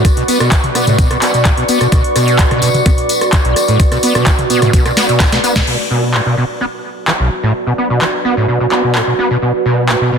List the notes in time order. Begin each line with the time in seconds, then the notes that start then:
Already playing: F#4 B4 D5 C#6
0.05 kick, cross-stick, closed hi-hat, tambourine
0.17 B2, closed hi-hat
0.28 B3, open hi-hat, tambourine
0.40 B2, cross-stick, closed hi-hat, tambourine
0.51 E3, kick, clap, closed hi-hat, tambourine
0.64 closed hi-hat, mid tom
0.75 B3, cross-stick, open hi-hat, tambourine
0.87 A2, closed hi-hat, mid tom, tambourine
0.98 B2, kick, closed hi-hat, tambourine
1.11 B2, cross-stick, closed hi-hat
1.22 B3, clap, open hi-hat, tambourine
1.34 B2, closed hi-hat, tambourine
1.45 A2, kick, cross-stick, clap, closed hi-hat, tambourine
1.57 B2, closed hi-hat
1.68 B3, open hi-hat, tambourine
1.81 B2, cross-stick, closed hi-hat, tambourine
1.92 B2, kick, cross-stick, closed hi-hat, tambourine
2.04 closed hi-hat
2.16 B2, cross-stick, open hi-hat, tambourine
2.28 closed hi-hat, tambourine
2.39 A2, kick, clap, closed hi-hat, tambourine
2.51 B2, cross-stick, closed hi-hat, mid tom
2.62 B2, open hi-hat, tambourine
2.74 closed hi-hat, mid tom, tambourine
2.86 B3, kick, cross-stick, closed hi-hat, tambourine
2.98 closed hi-hat
3.09 open hi-hat, tambourine
3.21 cross-stick, closed hi-hat, tambourine
3.33 E3, kick, clap, closed hi-hat, tambourine
3.45 B1, closed hi-hat
3.56 cross-stick, open hi-hat, tambourine
3.68 A2, closed hi-hat, tambourine
3.79 kick, cross-stick, closed hi-hat, tambourine
3.92 B2, cross-stick, closed hi-hat, tambourine
4.03 B3, open hi-hat, tambourine
4.15 B2, cross-stick, closed hi-hat, mid tom, tambourine
4.27 E3, kick, cross-stick, clap, closed hi-hat, tambourine
4.39 closed hi-hat, mid tom
4.50 B3, open hi-hat, tambourine
4.62 A2, cross-stick, closed hi-hat, mid tom, tambourine
4.73 B2, kick, closed hi-hat, tambourine
4.85 B2, cross-stick, closed hi-hat, tambourine
4.97 B3, snare, open hi-hat, tambourine
5.09 B2, closed hi-hat, tambourine
5.20 A2, kick, snare, clap, closed hi-hat, tambourine
5.32 B2, snare, closed hi-hat
5.44 B3, open hi-hat, tambourine
5.56 B2, kick, snare, closed hi-hat
5.67 B2 F#4, crash
5.86 B4 A5
5.91 B2
6.14 A2, clap
6.26 B2
6.37 B2
6.61 B3 D5
7.08 E3, clap
7.20 B1
7.43 A2
7.67 B2
7.78 B3
7.90 B2
8.02 E3, clap
8.25 B3
8.37 A2
8.48 B2
8.60 B2
8.72 B3, clap
8.84 B2
8.95 A2, clap
9.07 B2 G#5
9.19 B3
9.31 B2
9.42 B2
9.65 B2
9.89 A2, clap
10.01 B2
10.12 B2